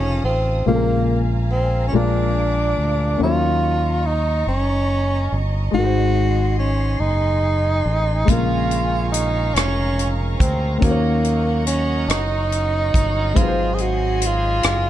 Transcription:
Already playing: fingered electric bass F1, grand piano C#3 A3 D#4 F4 C5, tenor saxophone C#4, string section F5 A5 D#6
0.24 fingered electric bass A1, tenor saxophone C4
0.66 fingered electric bass A#1, grand piano A#2 C#3 G#3 A#3 F4 A4, tenor saxophone A#3, string section F5 G#5 A#5
0.76 grand piano A#4
1.52 tenor saxophone C4
1.88 tenor saxophone C#4
1.92 fingered electric bass A#1, grand piano A#2 G#3 A#3 D4 F4 A#4, tenor saxophone D4, string section D6
2.78 fingered electric bass D2
3.18 fingered electric bass D#2, grand piano D#3 A#3 C#4 D#4, string section D#5 A#5 C#6
3.22 grand piano F#3 C#5, tenor saxophone F4
4.06 tenor saxophone D#4
4.47 fingered electric bass F#1, tenor saxophone C#4
5.32 fingered electric bass G1
5.71 fingered electric bass G#1, grand piano G#2 G#3 D#4, tenor saxophone F#4, string section G#5 C6
5.76 grand piano F#4 A#4
5.84 grand piano C5
6.59 tenor saxophone C#4
7.00 fingered electric bass F#1, tenor saxophone D#4
7.86 fingered electric bass A1
8.25 fingered electric bass A#1, grand piano A#2 C#3 G#3 A#3, tonewheel organ C#3 G#3 F4 A#4, string section F5 A#5 C#6, kick, closed hi-hat
8.30 tenor saxophone F4, grand piano F4 A#4
8.71 closed hi-hat
9.12 tenor saxophone D#4, closed hi-hat
9.55 fingered electric bass F1, tenor saxophone C#4, cross-stick, closed hi-hat
9.99 closed hi-hat
10.40 fingered electric bass D2, tenor saxophone C4, kick, closed hi-hat
10.75 grand piano A#3, tenor saxophone C4
10.79 fingered electric bass D#2, grand piano D#3 C#4 D#4 F#4, tonewheel organ F#3 C#4 D#4 G#4, string section D#5 F#5 C#6, kick, closed hi-hat
10.84 tenor saxophone A#3, grand piano C5
10.89 tonewheel organ A#4, grand piano C#5
11.24 closed hi-hat
11.67 tenor saxophone C#4, closed hi-hat
12.08 fingered electric bass F#1, tenor saxophone D#4, cross-stick, closed hi-hat
12.52 closed hi-hat
12.94 fingered electric bass G1, kick, closed hi-hat
13.34 fingered electric bass G#1, grand piano G#2 G#3 C4 D#4, tonewheel organ F#3 C4 D#4 G#4, tenor saxophone F4, string section G#5 C6, kick, closed hi-hat
13.39 grand piano F#3 B4
13.48 grand piano C5
13.74 tenor saxophone G#4
13.78 tenor saxophone F#4, closed hi-hat
14.22 closed hi-hat
14.26 tenor saxophone F4
14.63 fingered electric bass F#1, cross-stick, closed hi-hat

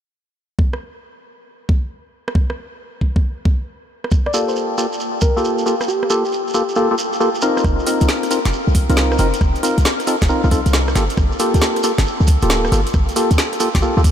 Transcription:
0.59 kick
0.73 cross-stick
1.69 kick
2.28 cross-stick
2.35 kick
2.50 cross-stick
3.01 kick
3.16 kick
3.45 kick
4.04 cross-stick
4.11 kick, shekere
4.26 soft synth lead D5, cross-stick
4.34 synth stab A#3 F4 G4 A4, soft synth lead D5, shekere
4.48 soft synth lead C5, shekere
4.56 shekere
4.78 synth stab A#3 F4 G4 A4, shekere
4.92 shekere
5.00 shekere
5.21 soft synth lead A#4, kick, shekere
5.37 synth stab A#3 F4 G4 A4, shekere
5.44 shekere
5.58 shekere
5.66 synth stab A#3 F4 G4 A4, shekere
5.81 cross-stick, shekere
5.88 soft synth lead G4, shekere
6.03 cross-stick
6.10 synth stab A#3 F4 G4 A4, shekere
6.25 soft synth lead G4, shekere
6.32 shekere
6.48 shekere
6.54 synth stab A#3 F4 G4 A4, shekere
6.69 shekere
6.75 synth stab A#3 F4 G4 A4, shekere
6.91 synth stab A#3 F4 G4 A4
6.98 shekere
7.13 shekere
7.20 synth stab A#3 F4 G4 A4, shekere
7.35 shekere
7.41 synth stab C4 D#4 F4 A#4, shekere
7.57 cross-stick, shekere
7.64 808-style bass F1, kick, cross-stick
7.79 shekere
7.87 synth stab C4 D#4 F4 A#4, open hi-hat, shekere
8.01 808-style bass C2, closed hi-hat, shekere
8.09 snare, shekere
8.23 cross-stick, closed hi-hat, shekere
8.31 synth stab C4 D#4 F4 A#4, open hi-hat, shekere
8.45 808-style bass F1, snare, closed hi-hat, shekere
8.53 shekere
8.67 808-style bass C2, shekere
8.75 kick, open hi-hat, shekere
8.89 808-style bass C2, synth stab C4 D#4 F4 A#4, closed hi-hat, shekere
8.96 snare, shekere
9.12 cross-stick, shekere
9.18 808-style bass F1, synth stab C4 D#4 F4 A#4, open hi-hat, shekere
9.34 closed hi-hat, shekere
9.41 808-style bass F1, kick, cross-stick, shekere
9.55 closed hi-hat, shekere
9.63 synth stab C4 D#4 F4 A#4, open hi-hat, shekere
9.78 808-style bass C2, closed hi-hat, shekere
9.85 snare, shekere
9.99 cross-stick, closed hi-hat, shekere
10.07 synth stab C4 D#4 F4 A4, open hi-hat, shekere
10.21 808-style bass F1, kick, snare, closed hi-hat, shekere
10.28 synth stab C4 D#4 F4 A#4, shekere
10.44 808-style bass C2, synth stab C4 D#4 F4 A#4, shekere
10.51 synth stab C4 D#4 F4 A4, kick, open hi-hat, shekere
10.66 808-style bass C2, closed hi-hat, shekere
10.73 snare, shekere
10.88 cross-stick, shekere
10.95 808-style bass G1, synth stab A#3 F4 G4 A4, snare, open hi-hat, shekere
11.10 closed hi-hat, shekere
11.17 808-style bass G1, kick, cross-stick, shekere
11.32 shekere
11.39 synth stab A#3 F4 G4 A4, open hi-hat, shekere
11.54 808-style bass D2, closed hi-hat, shekere
11.61 snare, shekere
11.76 cross-stick, closed hi-hat, shekere
11.83 synth stab A#3 F4 G4 A4, open hi-hat, shekere
11.98 808-style bass G1, snare, closed hi-hat, shekere
12.06 shekere
12.20 808-style bass D2, shekere
12.27 kick, open hi-hat, shekere
12.41 808-style bass D1, synth stab A#3 F4 G4 A4, closed hi-hat, shekere
12.50 snare, shekere
12.65 cross-stick, shekere
12.72 808-style bass G1, synth stab A#3 F4 G4 A4, open hi-hat, shekere
12.87 closed hi-hat, shekere
12.93 808-style bass G1, kick, cross-stick, shekere
13.09 closed hi-hat, shekere
13.16 synth stab A#3 F4 G4 A4, open hi-hat, shekere
13.31 808-style bass D2, closed hi-hat, shekere
13.38 snare, shekere
13.52 cross-stick, closed hi-hat, shekere
13.60 synth stab A#3 F4 G4 A4, open hi-hat, shekere
13.75 808-style bass G1, kick, snare, closed hi-hat, shekere
13.82 synth stab A#3 F4 G4 A4, shekere
13.97 808-style bass D2, synth stab A#3 F4 G4 A4, shekere
14.04 kick, open hi-hat, shekere

